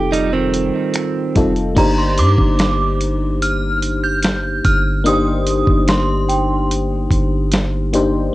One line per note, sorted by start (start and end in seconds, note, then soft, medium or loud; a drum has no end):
0.00 0.70 F1 loud
0.00 1.31 G3 medium
0.00 1.31 C4 medium
0.00 1.32 D#4 medium
0.00 1.32 F4 medium
0.00 0.10 G4 medium
0.00 1.33 A4 medium
0.12 0.32 G3 medium
0.12 0.32 D#4 medium
0.12 closed hi-hat medium
0.33 1.52 D#3 medium
0.33 1.52 C4 medium
0.54 closed hi-hat medium
0.94 finger snap loud
0.94 closed hi-hat medium
1.35 1.75 F1 loud
1.35 1.76 G3 medium
1.35 1.77 C4 soft
1.35 1.76 D#4 soft
1.35 1.77 F4 soft
1.35 1.78 A4 medium
1.35 kick medium
1.35 closed hi-hat medium
1.56 closed hi-hat soft
1.75 2.19 G1 loud
1.75 5.01 A#3 medium
1.75 5.01 D4 medium
1.75 5.02 D#4 medium
1.75 5.02 G4 medium
1.75 1.99 A#5 medium
1.75 kick loud
1.75 closed hi-hat medium
1.75 crash medium
1.79 5.03 C5 medium
1.98 2.19 C6 loud
2.18 2.37 G2 medium
2.18 4.24 C6 soft
2.18 2.97 D6 loud
2.18 closed hi-hat medium
2.38 4.60 G1 loud
2.38 kick medium
2.59 snare loud
2.59 closed hi-hat medium
3.01 closed hi-hat medium
3.42 4.05 F6 loud
3.42 closed hi-hat medium
3.82 closed hi-hat medium
4.04 4.67 G6 loud
4.23 snare loud
4.23 closed hi-hat medium
4.65 5.63 G1 loud
4.65 4.79 F6 loud
4.65 kick loud
4.65 closed hi-hat medium
5.04 7.88 A#3 medium
5.04 7.89 D4 medium
5.04 7.90 D#4 medium
5.04 7.90 G4 medium
5.04 5.84 D#6 loud
5.04 closed hi-hat medium
5.08 7.91 C5 medium
5.47 closed hi-hat medium
5.67 7.07 G1 loud
5.67 kick medium
5.88 6.67 C6 medium
5.88 snare loud
5.88 closed hi-hat medium
6.29 8.35 G5 medium
6.29 closed hi-hat medium
6.71 closed hi-hat medium
7.11 8.30 G1 loud
7.11 kick medium
7.11 closed hi-hat medium
7.52 snare loud
7.52 closed hi-hat medium
7.93 8.32 A#3 medium
7.93 8.33 D4 medium
7.93 8.35 D#4 medium
7.93 8.35 G4 medium
7.93 8.35 C5 medium
7.93 closed hi-hat medium